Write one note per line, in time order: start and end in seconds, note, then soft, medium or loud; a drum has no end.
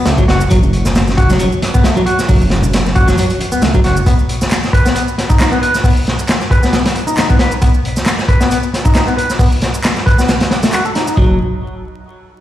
0.06 0.23 C#2 loud
0.06 0.16 A3 loud
0.06 snare loud
0.06 closed hi-hat medium
0.06 shaker medium
0.18 0.23 F#3 loud
0.18 kick medium
0.18 muted conga medium
0.18 high conga loud
0.18 shaker soft
0.28 0.45 F#1 loud
0.28 0.40 F#4 medium
0.28 snare medium
0.28 closed hi-hat medium
0.41 shaker medium
0.51 1.36 F#1 loud
0.51 0.57 F#3 loud
0.51 kick loud
0.51 closed hi-hat medium
0.51 shaker medium
0.63 muted conga soft
0.63 high conga medium
0.63 shaker soft
0.73 closed hi-hat medium
0.85 snare medium
0.85 muted conga medium
0.85 low conga medium
0.85 shaker medium
0.95 snare loud
0.95 closed hi-hat medium
0.95 high conga medium
0.95 shaker medium
1.07 snare medium
1.07 shaker soft
1.17 1.29 F#4 medium
1.17 kick loud
1.17 closed hi-hat medium
1.29 1.39 F#3 loud
1.29 snare medium
1.29 high conga medium
1.29 low conga medium
1.29 shaker medium
1.39 1.49 F#1 loud
1.39 1.46 F#3 loud
1.39 closed hi-hat medium
1.39 shaker medium
1.52 shaker soft
1.62 snare soft
1.62 closed hi-hat medium
1.62 high conga medium
1.74 1.83 B3 medium
1.74 kick medium
1.74 shaker medium
1.84 1.94 A3 loud
1.84 snare loud
1.84 closed hi-hat medium
1.84 shaker medium
1.96 2.01 F#3 loud
1.96 high conga loud
1.96 shaker soft
2.06 2.18 F#4 medium
2.06 closed hi-hat medium
2.19 snare soft
2.19 shaker medium
2.28 3.14 F#1 loud
2.28 2.35 F#3 loud
2.28 kick loud
2.28 open hi-hat medium
2.28 shaker medium
2.41 muted conga medium
2.41 high conga medium
2.41 shaker soft
2.50 snare medium
2.50 closed hi-hat medium
2.62 muted conga soft
2.62 low conga loud
2.62 shaker medium
2.73 snare loud
2.73 closed hi-hat medium
2.73 high conga medium
2.73 shaker medium
2.86 snare soft
2.86 shaker soft
2.95 3.07 F#4 medium
2.95 kick medium
2.95 closed hi-hat medium
3.07 3.16 F#3 loud
3.07 snare soft
3.07 high conga medium
3.07 low conga medium
3.07 shaker medium
3.18 3.24 F#3 loud
3.18 closed hi-hat medium
3.18 shaker medium
3.30 closed hi-hat soft
3.30 shaker soft
3.39 closed hi-hat medium
3.39 muted conga medium
3.39 high conga medium
3.52 3.60 C#2 soft
3.52 3.61 B3 medium
3.52 shaker medium
3.62 3.79 C#2 loud
3.62 3.72 A3 medium
3.62 snare loud
3.62 closed hi-hat medium
3.62 shaker medium
3.74 3.79 F#3 loud
3.74 kick loud
3.74 muted conga medium
3.74 high conga loud
3.74 shaker soft
3.84 4.01 F#1 loud
3.84 3.96 F#4 medium
3.84 snare soft
3.84 closed hi-hat medium
3.97 shaker medium
4.06 4.13 B3 loud
4.06 kick loud
4.06 closed hi-hat medium
4.06 shaker medium
4.19 shaker soft
4.29 closed hi-hat medium
4.41 snare medium
4.41 shaker medium
4.51 snare loud
4.51 clap loud
4.51 closed hi-hat medium
4.51 shaker medium
4.63 snare medium
4.63 shaker soft
4.73 4.85 B4 medium
4.73 kick medium
4.73 closed hi-hat medium
4.85 4.94 B3 loud
4.85 snare medium
4.85 shaker medium
4.95 5.01 B3 loud
4.95 closed hi-hat medium
4.95 shaker soft
5.08 shaker soft
5.18 snare soft
5.18 closed hi-hat medium
5.29 5.38 D#4 medium
5.29 kick medium
5.29 shaker medium
5.39 5.50 D#4 loud
5.39 snare loud
5.39 clap loud
5.39 closed hi-hat medium
5.39 shaker soft
5.52 5.57 B3 loud
5.52 shaker soft
5.62 5.73 B4 medium
5.62 closed hi-hat medium
5.74 snare soft
5.74 shaker medium
5.84 5.90 B3 loud
5.84 kick loud
5.84 open hi-hat medium
5.84 shaker medium
5.97 shaker soft
6.07 snare medium
6.07 closed hi-hat medium
6.19 shaker medium
6.28 snare loud
6.28 clap loud
6.28 closed hi-hat medium
6.28 shaker soft
6.41 snare soft
6.41 shaker soft
6.51 6.62 B4 medium
6.51 kick loud
6.51 closed hi-hat medium
6.63 6.71 B3 loud
6.63 snare soft
6.63 shaker medium
6.73 6.79 B3 loud
6.73 snare loud
6.73 closed hi-hat medium
6.73 shaker soft
6.85 snare loud
6.85 closed hi-hat medium
6.85 shaker soft
6.96 closed hi-hat medium
7.07 7.16 D#4 medium
7.07 shaker medium
7.17 7.28 D#4 loud
7.17 snare loud
7.17 clap loud
7.17 closed hi-hat medium
7.17 shaker soft
7.30 7.35 B3 loud
7.30 kick medium
7.30 shaker soft
7.39 7.51 B4 medium
7.39 snare loud
7.39 closed hi-hat medium
7.52 shaker medium
7.62 7.68 B3 loud
7.62 kick loud
7.62 closed hi-hat loud
7.62 shaker medium
7.74 shaker soft
7.85 closed hi-hat medium
7.96 snare soft
7.96 shaker medium
8.06 snare loud
8.06 clap loud
8.06 closed hi-hat medium
8.06 shaker soft
8.19 snare medium
8.19 shaker soft
8.28 8.40 B4 medium
8.28 kick medium
8.28 closed hi-hat medium
8.40 8.49 B3 loud
8.40 snare medium
8.40 shaker medium
8.50 8.57 B3 loud
8.50 closed hi-hat medium
8.50 shaker medium
8.63 shaker soft
8.74 snare soft
8.74 closed hi-hat medium
8.85 8.94 D#4 medium
8.85 kick medium
8.85 shaker medium
8.95 9.05 D#4 loud
8.95 snare loud
8.95 clap loud
8.95 closed hi-hat medium
8.95 shaker soft
9.07 9.12 B3 loud
9.07 shaker soft
9.17 9.29 B4 medium
9.17 closed hi-hat medium
9.30 snare soft
9.30 shaker medium
9.39 9.46 B3 loud
9.39 kick loud
9.39 open hi-hat medium
9.39 shaker medium
9.52 shaker soft
9.62 snare medium
9.62 closed hi-hat medium
9.74 shaker medium
9.84 snare loud
9.84 clap loud
9.84 closed hi-hat medium
9.84 shaker medium
9.96 snare soft
9.96 shaker soft
10.06 10.18 B4 medium
10.06 kick loud
10.06 closed hi-hat medium
10.18 10.27 B3 loud
10.18 snare soft
10.18 shaker medium
10.28 10.35 B3 loud
10.28 snare loud
10.28 closed hi-hat medium
10.28 shaker medium
10.40 snare loud
10.40 closed hi-hat medium
10.40 shaker soft
10.51 snare loud
10.51 closed hi-hat medium
10.63 10.71 A3 medium
10.63 snare loud
10.63 closed hi-hat medium
10.63 shaker medium
10.73 10.85 F#4 medium
10.73 clap loud
10.73 closed hi-hat medium
10.73 shaker medium
10.85 10.90 A4 medium
10.85 shaker soft
10.95 11.06 D#4 medium
10.95 snare soft
10.95 closed hi-hat medium
11.07 11.16 D#4 medium
11.07 shaker medium
11.17 11.38 F#1 medium
11.17 11.38 F#3 medium
11.17 kick loud